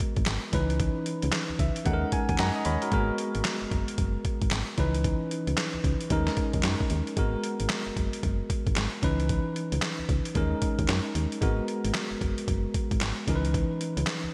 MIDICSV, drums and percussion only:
0, 0, Header, 1, 2, 480
1, 0, Start_track
1, 0, Key_signature, 5, "minor"
1, 0, Tempo, 530973
1, 720, Time_signature, 4, 2, 24, 8
1, 12961, End_track
2, 0, Start_track
2, 0, Title_t, "Drums"
2, 0, Note_on_c, 9, 36, 93
2, 0, Note_on_c, 9, 42, 71
2, 89, Note_off_c, 9, 42, 0
2, 90, Note_off_c, 9, 36, 0
2, 149, Note_on_c, 9, 42, 46
2, 152, Note_on_c, 9, 36, 93
2, 236, Note_on_c, 9, 39, 92
2, 238, Note_off_c, 9, 42, 0
2, 238, Note_on_c, 9, 38, 116
2, 238, Note_on_c, 9, 42, 66
2, 242, Note_off_c, 9, 36, 0
2, 326, Note_off_c, 9, 39, 0
2, 328, Note_off_c, 9, 38, 0
2, 329, Note_off_c, 9, 42, 0
2, 478, Note_on_c, 9, 42, 68
2, 481, Note_on_c, 9, 36, 81
2, 568, Note_off_c, 9, 42, 0
2, 571, Note_off_c, 9, 36, 0
2, 632, Note_on_c, 9, 42, 48
2, 720, Note_off_c, 9, 42, 0
2, 720, Note_on_c, 9, 36, 107
2, 720, Note_on_c, 9, 42, 65
2, 810, Note_off_c, 9, 36, 0
2, 810, Note_off_c, 9, 42, 0
2, 958, Note_on_c, 9, 42, 65
2, 1048, Note_off_c, 9, 42, 0
2, 1107, Note_on_c, 9, 42, 52
2, 1195, Note_on_c, 9, 39, 94
2, 1197, Note_off_c, 9, 42, 0
2, 1197, Note_on_c, 9, 38, 122
2, 1200, Note_on_c, 9, 42, 73
2, 1285, Note_off_c, 9, 39, 0
2, 1287, Note_off_c, 9, 38, 0
2, 1290, Note_off_c, 9, 42, 0
2, 1439, Note_on_c, 9, 36, 93
2, 1441, Note_on_c, 9, 42, 63
2, 1529, Note_off_c, 9, 36, 0
2, 1531, Note_off_c, 9, 42, 0
2, 1590, Note_on_c, 9, 42, 54
2, 1677, Note_off_c, 9, 42, 0
2, 1677, Note_on_c, 9, 42, 72
2, 1680, Note_on_c, 9, 36, 96
2, 1768, Note_off_c, 9, 42, 0
2, 1770, Note_off_c, 9, 36, 0
2, 1917, Note_on_c, 9, 42, 73
2, 1919, Note_on_c, 9, 36, 99
2, 2008, Note_off_c, 9, 42, 0
2, 2010, Note_off_c, 9, 36, 0
2, 2068, Note_on_c, 9, 42, 47
2, 2071, Note_on_c, 9, 36, 97
2, 2155, Note_on_c, 9, 39, 93
2, 2157, Note_on_c, 9, 38, 118
2, 2158, Note_off_c, 9, 42, 0
2, 2158, Note_on_c, 9, 42, 68
2, 2161, Note_off_c, 9, 36, 0
2, 2246, Note_off_c, 9, 39, 0
2, 2248, Note_off_c, 9, 38, 0
2, 2248, Note_off_c, 9, 42, 0
2, 2395, Note_on_c, 9, 42, 72
2, 2485, Note_off_c, 9, 42, 0
2, 2548, Note_on_c, 9, 42, 47
2, 2637, Note_off_c, 9, 42, 0
2, 2637, Note_on_c, 9, 42, 65
2, 2638, Note_on_c, 9, 36, 107
2, 2727, Note_off_c, 9, 42, 0
2, 2729, Note_off_c, 9, 36, 0
2, 2877, Note_on_c, 9, 42, 66
2, 2968, Note_off_c, 9, 42, 0
2, 3026, Note_on_c, 9, 42, 55
2, 3114, Note_on_c, 9, 39, 95
2, 3116, Note_off_c, 9, 42, 0
2, 3116, Note_on_c, 9, 38, 114
2, 3119, Note_on_c, 9, 42, 69
2, 3204, Note_off_c, 9, 39, 0
2, 3206, Note_off_c, 9, 38, 0
2, 3209, Note_off_c, 9, 42, 0
2, 3358, Note_on_c, 9, 36, 92
2, 3358, Note_on_c, 9, 42, 61
2, 3448, Note_off_c, 9, 36, 0
2, 3449, Note_off_c, 9, 42, 0
2, 3509, Note_on_c, 9, 42, 59
2, 3598, Note_off_c, 9, 42, 0
2, 3598, Note_on_c, 9, 42, 69
2, 3599, Note_on_c, 9, 36, 98
2, 3688, Note_off_c, 9, 42, 0
2, 3690, Note_off_c, 9, 36, 0
2, 3839, Note_on_c, 9, 42, 75
2, 3840, Note_on_c, 9, 36, 93
2, 3930, Note_off_c, 9, 36, 0
2, 3930, Note_off_c, 9, 42, 0
2, 3991, Note_on_c, 9, 42, 46
2, 3992, Note_on_c, 9, 36, 94
2, 4077, Note_on_c, 9, 39, 99
2, 4079, Note_on_c, 9, 38, 115
2, 4080, Note_off_c, 9, 42, 0
2, 4080, Note_on_c, 9, 42, 65
2, 4082, Note_off_c, 9, 36, 0
2, 4168, Note_off_c, 9, 39, 0
2, 4170, Note_off_c, 9, 38, 0
2, 4170, Note_off_c, 9, 42, 0
2, 4318, Note_on_c, 9, 42, 66
2, 4320, Note_on_c, 9, 36, 77
2, 4408, Note_off_c, 9, 42, 0
2, 4411, Note_off_c, 9, 36, 0
2, 4470, Note_on_c, 9, 42, 47
2, 4560, Note_off_c, 9, 42, 0
2, 4560, Note_on_c, 9, 36, 109
2, 4560, Note_on_c, 9, 42, 69
2, 4650, Note_off_c, 9, 36, 0
2, 4650, Note_off_c, 9, 42, 0
2, 4803, Note_on_c, 9, 42, 61
2, 4893, Note_off_c, 9, 42, 0
2, 4948, Note_on_c, 9, 42, 56
2, 5038, Note_on_c, 9, 39, 92
2, 5039, Note_off_c, 9, 42, 0
2, 5040, Note_on_c, 9, 38, 117
2, 5043, Note_on_c, 9, 42, 74
2, 5128, Note_off_c, 9, 39, 0
2, 5131, Note_off_c, 9, 38, 0
2, 5133, Note_off_c, 9, 42, 0
2, 5279, Note_on_c, 9, 36, 91
2, 5282, Note_on_c, 9, 42, 57
2, 5370, Note_off_c, 9, 36, 0
2, 5373, Note_off_c, 9, 42, 0
2, 5429, Note_on_c, 9, 42, 54
2, 5517, Note_off_c, 9, 42, 0
2, 5517, Note_on_c, 9, 42, 72
2, 5519, Note_on_c, 9, 36, 105
2, 5607, Note_off_c, 9, 42, 0
2, 5610, Note_off_c, 9, 36, 0
2, 5666, Note_on_c, 9, 38, 63
2, 5756, Note_off_c, 9, 38, 0
2, 5756, Note_on_c, 9, 42, 68
2, 5759, Note_on_c, 9, 36, 94
2, 5847, Note_off_c, 9, 42, 0
2, 5849, Note_off_c, 9, 36, 0
2, 5907, Note_on_c, 9, 42, 47
2, 5911, Note_on_c, 9, 36, 92
2, 5995, Note_on_c, 9, 39, 98
2, 5998, Note_off_c, 9, 42, 0
2, 5998, Note_on_c, 9, 38, 109
2, 5998, Note_on_c, 9, 42, 68
2, 6001, Note_off_c, 9, 36, 0
2, 6086, Note_off_c, 9, 39, 0
2, 6088, Note_off_c, 9, 38, 0
2, 6088, Note_off_c, 9, 42, 0
2, 6151, Note_on_c, 9, 36, 94
2, 6236, Note_on_c, 9, 42, 67
2, 6241, Note_off_c, 9, 36, 0
2, 6327, Note_off_c, 9, 42, 0
2, 6393, Note_on_c, 9, 42, 46
2, 6480, Note_off_c, 9, 42, 0
2, 6480, Note_on_c, 9, 42, 67
2, 6481, Note_on_c, 9, 36, 109
2, 6570, Note_off_c, 9, 42, 0
2, 6571, Note_off_c, 9, 36, 0
2, 6722, Note_on_c, 9, 42, 66
2, 6812, Note_off_c, 9, 42, 0
2, 6868, Note_on_c, 9, 42, 55
2, 6955, Note_on_c, 9, 39, 97
2, 6957, Note_on_c, 9, 38, 113
2, 6958, Note_off_c, 9, 42, 0
2, 6960, Note_on_c, 9, 42, 75
2, 7045, Note_off_c, 9, 39, 0
2, 7047, Note_off_c, 9, 38, 0
2, 7050, Note_off_c, 9, 42, 0
2, 7201, Note_on_c, 9, 36, 91
2, 7203, Note_on_c, 9, 42, 55
2, 7291, Note_off_c, 9, 36, 0
2, 7293, Note_off_c, 9, 42, 0
2, 7352, Note_on_c, 9, 42, 55
2, 7442, Note_off_c, 9, 42, 0
2, 7442, Note_on_c, 9, 36, 96
2, 7442, Note_on_c, 9, 42, 74
2, 7532, Note_off_c, 9, 36, 0
2, 7532, Note_off_c, 9, 42, 0
2, 7682, Note_on_c, 9, 36, 94
2, 7683, Note_on_c, 9, 42, 78
2, 7772, Note_off_c, 9, 36, 0
2, 7774, Note_off_c, 9, 42, 0
2, 7834, Note_on_c, 9, 36, 89
2, 7835, Note_on_c, 9, 42, 50
2, 7922, Note_on_c, 9, 39, 94
2, 7924, Note_off_c, 9, 36, 0
2, 7924, Note_off_c, 9, 42, 0
2, 7924, Note_on_c, 9, 38, 117
2, 7924, Note_on_c, 9, 42, 64
2, 8012, Note_off_c, 9, 39, 0
2, 8014, Note_off_c, 9, 38, 0
2, 8015, Note_off_c, 9, 42, 0
2, 8161, Note_on_c, 9, 42, 63
2, 8163, Note_on_c, 9, 36, 84
2, 8251, Note_off_c, 9, 42, 0
2, 8253, Note_off_c, 9, 36, 0
2, 8314, Note_on_c, 9, 42, 44
2, 8401, Note_off_c, 9, 42, 0
2, 8401, Note_on_c, 9, 42, 62
2, 8402, Note_on_c, 9, 36, 105
2, 8492, Note_off_c, 9, 36, 0
2, 8492, Note_off_c, 9, 42, 0
2, 8643, Note_on_c, 9, 42, 65
2, 8733, Note_off_c, 9, 42, 0
2, 8789, Note_on_c, 9, 42, 53
2, 8877, Note_on_c, 9, 39, 98
2, 8879, Note_off_c, 9, 42, 0
2, 8879, Note_on_c, 9, 38, 110
2, 8882, Note_on_c, 9, 42, 71
2, 8967, Note_off_c, 9, 39, 0
2, 8969, Note_off_c, 9, 38, 0
2, 8972, Note_off_c, 9, 42, 0
2, 9120, Note_on_c, 9, 36, 92
2, 9122, Note_on_c, 9, 42, 56
2, 9211, Note_off_c, 9, 36, 0
2, 9212, Note_off_c, 9, 42, 0
2, 9270, Note_on_c, 9, 42, 58
2, 9358, Note_off_c, 9, 42, 0
2, 9358, Note_on_c, 9, 42, 70
2, 9361, Note_on_c, 9, 36, 98
2, 9448, Note_off_c, 9, 42, 0
2, 9451, Note_off_c, 9, 36, 0
2, 9598, Note_on_c, 9, 42, 76
2, 9600, Note_on_c, 9, 36, 95
2, 9688, Note_off_c, 9, 42, 0
2, 9690, Note_off_c, 9, 36, 0
2, 9751, Note_on_c, 9, 42, 47
2, 9752, Note_on_c, 9, 36, 94
2, 9840, Note_on_c, 9, 39, 89
2, 9841, Note_off_c, 9, 42, 0
2, 9842, Note_on_c, 9, 38, 113
2, 9842, Note_on_c, 9, 42, 68
2, 9843, Note_off_c, 9, 36, 0
2, 9930, Note_off_c, 9, 39, 0
2, 9932, Note_off_c, 9, 38, 0
2, 9933, Note_off_c, 9, 42, 0
2, 10081, Note_on_c, 9, 42, 63
2, 10172, Note_off_c, 9, 42, 0
2, 10235, Note_on_c, 9, 42, 48
2, 10321, Note_on_c, 9, 36, 109
2, 10322, Note_off_c, 9, 42, 0
2, 10322, Note_on_c, 9, 42, 64
2, 10412, Note_off_c, 9, 36, 0
2, 10413, Note_off_c, 9, 42, 0
2, 10560, Note_on_c, 9, 42, 61
2, 10651, Note_off_c, 9, 42, 0
2, 10708, Note_on_c, 9, 42, 52
2, 10796, Note_on_c, 9, 39, 88
2, 10798, Note_on_c, 9, 38, 111
2, 10799, Note_off_c, 9, 42, 0
2, 10801, Note_on_c, 9, 42, 73
2, 10886, Note_off_c, 9, 39, 0
2, 10888, Note_off_c, 9, 38, 0
2, 10891, Note_off_c, 9, 42, 0
2, 11040, Note_on_c, 9, 36, 87
2, 11042, Note_on_c, 9, 42, 60
2, 11130, Note_off_c, 9, 36, 0
2, 11132, Note_off_c, 9, 42, 0
2, 11191, Note_on_c, 9, 42, 58
2, 11281, Note_off_c, 9, 42, 0
2, 11281, Note_on_c, 9, 36, 102
2, 11281, Note_on_c, 9, 42, 72
2, 11371, Note_off_c, 9, 36, 0
2, 11371, Note_off_c, 9, 42, 0
2, 11520, Note_on_c, 9, 36, 93
2, 11521, Note_on_c, 9, 42, 75
2, 11611, Note_off_c, 9, 36, 0
2, 11611, Note_off_c, 9, 42, 0
2, 11673, Note_on_c, 9, 36, 85
2, 11673, Note_on_c, 9, 42, 47
2, 11762, Note_on_c, 9, 39, 99
2, 11763, Note_off_c, 9, 36, 0
2, 11763, Note_off_c, 9, 42, 0
2, 11764, Note_on_c, 9, 38, 112
2, 11765, Note_on_c, 9, 42, 69
2, 11853, Note_off_c, 9, 39, 0
2, 11855, Note_off_c, 9, 38, 0
2, 11855, Note_off_c, 9, 42, 0
2, 12002, Note_on_c, 9, 42, 73
2, 12003, Note_on_c, 9, 36, 75
2, 12092, Note_off_c, 9, 42, 0
2, 12093, Note_off_c, 9, 36, 0
2, 12156, Note_on_c, 9, 42, 47
2, 12242, Note_on_c, 9, 36, 110
2, 12243, Note_off_c, 9, 42, 0
2, 12243, Note_on_c, 9, 42, 63
2, 12332, Note_off_c, 9, 36, 0
2, 12334, Note_off_c, 9, 42, 0
2, 12483, Note_on_c, 9, 42, 66
2, 12573, Note_off_c, 9, 42, 0
2, 12631, Note_on_c, 9, 42, 58
2, 12716, Note_on_c, 9, 39, 99
2, 12718, Note_on_c, 9, 38, 122
2, 12721, Note_off_c, 9, 42, 0
2, 12721, Note_on_c, 9, 42, 71
2, 12806, Note_off_c, 9, 39, 0
2, 12808, Note_off_c, 9, 38, 0
2, 12811, Note_off_c, 9, 42, 0
2, 12961, End_track
0, 0, End_of_file